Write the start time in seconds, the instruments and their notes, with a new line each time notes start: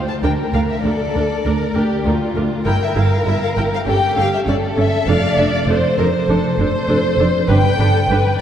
Already playing: violin section C5
0.09 violin section A5
0.23 double bass section D2, cello section D2, viola section D4 A#4, violin section A#4 G5
0.53 double bass section D2, cello section D2, viola section D4 A#4, violin section F5
0.70 violin section E5
0.84 cello section D2, double bass section D2, viola section D4 A#4, violin section A4 D5
1.14 double bass section D2, cello section D2, viola section D4 A#4
1.45 double bass section D2, cello section D2, viola section D4 A#4, violin section A#4
1.75 double bass section D2, cello section D2, viola section D4 A#4, violin section G4
2.05 cello section D2, double bass section D2, viola section D4 A#4, violin section F4
2.35 cello section D2, double bass section D2, viola section D4 A#4
2.65 double bass section G1, cello section G2, viola section E4 A#4, violin section A#4 G5
2.82 violin section E5
2.95 double bass section G1, cello section G2, viola section E4 A#4, violin section F5
3.26 double bass section G1, cello section G2, viola section E4 A#4, violin section E5
3.43 violin section F5
3.56 double bass section G1, cello section G2, viola section E4 A#4, violin section G5
3.74 violin section F5
3.87 double bass section G1, cello section G2, viola section C#4 A4, violin section G4 G5
4.17 double bass section G1, cello section G2, viola section C#4 A4, violin section F5
4.33 violin section E5
4.46 double bass section G1, cello section G2, viola section C#4 A4, violin section A4 D5
4.76 double bass section G1, cello section G2, viola section C#4 A4, violin section E5
5.07 double bass section F1, cello section F2, viola section D4 A4, violin section D5 F5
5.38 double bass section F1, cello section F2, viola section D4 A4, violin section E5
5.53 violin section D5
5.67 double bass section F1, cello section F2, viola section D4 A4, violin section C5
5.98 double bass section F1, cello section F2, viola section D4 A4, violin section A#4
6.28 double bass section F1, cello section F2, viola section D4 A4, violin section A4
6.57 double bass section F1, cello section F2, viola section D4 A4, violin section C5
6.88 double bass section F1, cello section F2, viola section D4 A4
7.18 double bass section F1, cello section F2, viola section D4 A4
7.48 double bass section G1, cello section G2, viola section D4 B4, violin section B4 G5
7.78 double bass section G1, cello section G2, viola section D4 B4, violin section A4
8.09 double bass section G1, cello section G2, viola section D4 B4, violin section B4